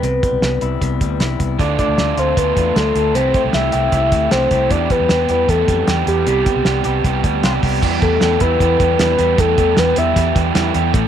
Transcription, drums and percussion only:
0.03 closed hi-hat
0.23 kick, closed hi-hat
0.42 snare, closed hi-hat
0.61 closed hi-hat
0.81 kick, closed hi-hat
1.01 kick, closed hi-hat
1.20 snare, closed hi-hat
1.40 kick, closed hi-hat
1.59 kick, closed hi-hat
1.79 kick, closed hi-hat
1.98 snare, closed hi-hat
2.17 closed hi-hat
2.37 kick, closed hi-hat
2.57 kick, closed hi-hat
2.76 snare, closed hi-hat
2.95 closed hi-hat
3.15 closed hi-hat
3.34 kick, closed hi-hat
3.53 snare, closed hi-hat
3.72 closed hi-hat
3.92 kick, closed hi-hat
4.12 kick, closed hi-hat
4.31 snare, closed hi-hat
4.51 kick, closed hi-hat
4.70 kick, closed hi-hat
4.90 kick, closed hi-hat
5.09 snare, closed hi-hat
5.29 closed hi-hat
5.49 kick, closed hi-hat
5.68 kick, closed hi-hat
5.87 snare, closed hi-hat
6.07 closed hi-hat
6.27 closed hi-hat
6.46 kick, closed hi-hat
6.65 snare, closed hi-hat
6.84 closed hi-hat
7.04 kick, closed hi-hat
7.24 kick, closed hi-hat
7.43 snare, closed hi-hat
7.63 kick, open hi-hat
7.83 kick, crash
8.02 kick, closed hi-hat
8.21 snare, closed hi-hat
8.40 kick, closed hi-hat
8.60 kick, closed hi-hat
8.80 kick, closed hi-hat
8.99 snare, closed hi-hat
9.19 closed hi-hat
9.38 kick, closed hi-hat
9.58 kick, closed hi-hat
9.77 snare, closed hi-hat
9.96 closed hi-hat
10.16 kick, closed hi-hat
10.36 kick, closed hi-hat
10.55 snare, closed hi-hat
10.74 closed hi-hat
10.94 kick, closed hi-hat

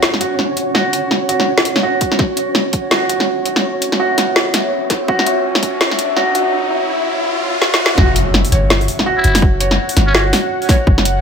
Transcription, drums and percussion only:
0.03 snare
0.14 snare
0.21 closed hi-hat
0.39 snare
0.57 closed hi-hat
0.75 snare
0.93 closed hi-hat
1.11 snare
1.29 closed hi-hat
1.40 snare
1.58 snare
1.65 closed hi-hat
1.76 snare
2.01 kick, closed hi-hat
2.12 snare
2.19 kick, snare
2.37 closed hi-hat
2.55 snare
2.73 kick, closed hi-hat
2.91 snare
3.09 closed hi-hat
3.20 snare
3.46 closed hi-hat
3.56 snare
3.82 closed hi-hat
3.92 snare
4.18 snare, closed hi-hat
4.36 snare
4.54 snare, closed hi-hat
4.90 kick, snare, closed hi-hat
5.08 kick
5.19 snare
5.26 closed hi-hat
5.55 snare
5.63 kick, closed hi-hat
5.81 snare
5.91 snare
5.99 closed hi-hat
6.16 snare
6.35 closed hi-hat
7.62 snare
7.74 snare
7.86 snare
7.98 kick, snare
8.16 closed hi-hat
8.34 snare
8.45 open hi-hat
8.52 closed hi-hat
8.70 snare
8.81 open hi-hat
8.88 open hi-hat
8.99 snare
9.24 closed hi-hat
9.35 snare, open hi-hat
9.42 kick
9.60 closed hi-hat
9.71 snare
9.89 open hi-hat
9.97 snare, closed hi-hat
10.15 snare
10.33 snare, open hi-hat
10.62 open hi-hat
10.69 kick, snare, open hi-hat
10.87 kick
10.98 snare
11.05 closed hi-hat

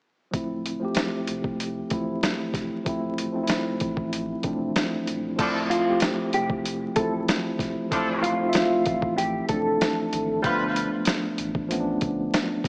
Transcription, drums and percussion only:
0.34 kick, closed hi-hat
0.66 closed hi-hat
0.95 snare, closed hi-hat
1.27 closed hi-hat
1.44 kick
1.60 closed hi-hat
1.90 kick, closed hi-hat
2.23 snare, closed hi-hat
2.54 kick, snare, closed hi-hat
2.86 kick, closed hi-hat
3.18 closed hi-hat
3.47 snare, closed hi-hat
3.80 kick, closed hi-hat
3.97 kick
4.13 closed hi-hat
4.43 kick, closed hi-hat
4.76 snare, closed hi-hat
5.07 closed hi-hat
5.39 kick, closed hi-hat, crash
5.71 closed hi-hat
6.00 snare, closed hi-hat
6.33 closed hi-hat
6.50 kick
6.65 closed hi-hat
6.96 kick, closed hi-hat
7.28 snare, closed hi-hat
7.59 kick, snare, closed hi-hat
7.92 kick, closed hi-hat
8.24 closed hi-hat
8.53 snare, closed hi-hat
8.86 kick, closed hi-hat
9.02 kick
9.18 closed hi-hat
9.49 kick, closed hi-hat
9.81 snare, closed hi-hat
10.13 closed hi-hat
10.44 kick, closed hi-hat
10.76 closed hi-hat
11.05 snare, closed hi-hat
11.38 closed hi-hat
11.55 kick
11.71 closed hi-hat
12.01 kick, closed hi-hat
12.34 snare, closed hi-hat
12.64 kick

